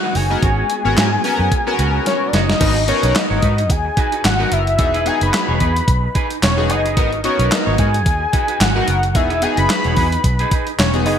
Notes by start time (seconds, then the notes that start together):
Already playing: D#3 G#3 B3 F#4 F#5
0.03 D#4 F#4 B4
0.15 F#1 D#4 F#4 C#5 G#5, open hi-hat
0.30 B3 D#4 F#4 A#4, muted clean electric guitar stroke
0.43 G#1 B3 C#4 F#4 C#5, kick, closed hi-hat
0.70 muted clean electric guitar stroke, closed hi-hat
0.85 G#1 B3 C#4 F#4 A#4 C#5
0.97 G#2, snare, clap, closed hi-hat
1.12 muted clean electric guitar stroke
1.24 B3 C#4 F#4 A#4 B4, open hi-hat
1.39 F#2, muted clean electric guitar stroke
1.52 muted clean electric guitar stroke, kick, closed hi-hat
1.67 B3 C#4 F#4 A#4 B4
1.79 C#2 C#4 F#4 B4, closed hi-hat
1.94 muted clean electric guitar stroke
2.06 C#5, muted clean electric guitar stroke, snare, closed hi-hat
2.21 muted clean electric guitar stroke
2.27 D5
2.33 F#1 C#4 F#4 C#5 D#5, snare, closed hi-hat
2.48 muted clean electric guitar stroke, snare
2.60 G#1 B3 D#4 F#4 A#4 B4, kick, closed hi-hat, crash
2.76 muted clean electric guitar stroke, closed hi-hat
2.87 B3 D#4 F#4 A#4 B4 C#5, closed hi-hat
3.03 B1 D#4 F#4 B4, closed hi-hat
3.15 D#5, muted clean electric guitar stroke, snare, clap, closed hi-hat
3.30 G#1 D#4 F#4 C#5
3.42 G#2 D#4 F#4 B4, kick, closed hi-hat
3.58 muted clean electric guitar stroke, closed hi-hat
3.70 D#2 G#5, muted clean electric guitar stroke, kick, closed hi-hat
3.85 muted clean electric guitar stroke
3.97 D#4 F#4 B4, kick, closed hi-hat
4.12 D#4 F#4 B4, closed hi-hat
4.24 G#1 F#5, muted clean electric guitar stroke, snare, clap, closed hi-hat
4.39 B3 D#4 F#4 A#4 B4
4.51 F#1 E5, muted clean electric guitar stroke, closed hi-hat
4.67 muted clean electric guitar stroke, closed hi-hat
4.78 E1 B3 D#4 F#4 G#4, muted clean electric guitar stroke, kick, closed hi-hat
4.94 D#4 G#4 B4, closed hi-hat
5.05 B3 D#4 F#4 G#4 B4 G#5, closed hi-hat
5.21 F#1 B5, muted clean electric guitar stroke, closed hi-hat
5.33 muted clean electric guitar stroke, snare, clap, closed hi-hat
5.48 E1 D#4 G#4 C#5
5.60 E2 D#4 G#4 B4, kick, closed hi-hat
5.76 muted clean electric guitar stroke, closed hi-hat
5.88 B1, kick, closed hi-hat
6.03 muted clean electric guitar stroke
6.15 D#4 G#4 B4, kick, closed hi-hat
6.30 muted clean electric guitar stroke, closed hi-hat
6.42 E1 C#5, muted clean electric guitar stroke, snare, clap, closed hi-hat
6.57 B3 D#4 F#4 G#4, muted clean electric guitar stroke
6.69 F#1 D#4 G#4 B4 D#5, closed hi-hat
6.85 D#4 G#4 B4, closed hi-hat
6.96 G#1 B3 D#4 F#4 A#4 B4, kick, closed hi-hat
7.12 muted clean electric guitar stroke, closed hi-hat
7.24 B3 D#4 F#4 A#4 B4 C#5, closed hi-hat
7.39 B1 D#4 F#4 B4, closed hi-hat
7.51 D#5, muted clean electric guitar stroke, snare, clap, closed hi-hat
7.66 G#1 D#4 F#4 C#5
7.78 G#2 D#4 F#4 B4 G#5, kick, closed hi-hat
7.94 muted clean electric guitar stroke, closed hi-hat
8.06 D#2, muted clean electric guitar stroke, kick, closed hi-hat
8.21 muted clean electric guitar stroke
8.33 D#4 F#4 B4, kick, closed hi-hat
8.48 D#4 F#4 B4, closed hi-hat
8.60 G#1 F#5, muted clean electric guitar stroke, snare, clap, closed hi-hat
8.75 B3 D#4 F#4 A#4 B4
8.88 F#1, muted clean electric guitar stroke, closed hi-hat
9.03 muted clean electric guitar stroke, closed hi-hat
9.15 E1 B3 D#4 F#4 G#4 E5, muted clean electric guitar stroke, kick, closed hi-hat
9.30 D#4 G#4 B4, closed hi-hat
9.42 B3 D#4 F#4 G#4 B4 G#5, closed hi-hat
9.57 F#1 B5, muted clean electric guitar stroke, closed hi-hat
9.70 snare, clap, closed hi-hat
9.84 E1 D#4 G#4 C#5, closed hi-hat
9.97 E2 D#4 G#4 B4, kick, open hi-hat
10.12 muted clean electric guitar stroke, closed hi-hat
10.24 B1, muted clean electric guitar stroke, kick, closed hi-hat
10.39 D#4 G#4 B4, closed hi-hat
10.51 D#4 G#4 B4, kick, closed hi-hat
10.67 muted clean electric guitar stroke, closed hi-hat
10.79 E1 C#5, muted clean electric guitar stroke, snare, clap, closed hi-hat
10.94 B3 D#4 F#4 G#4, muted clean electric guitar stroke, closed hi-hat
11.06 F#1 D#4 G#4 B4 D#5, open hi-hat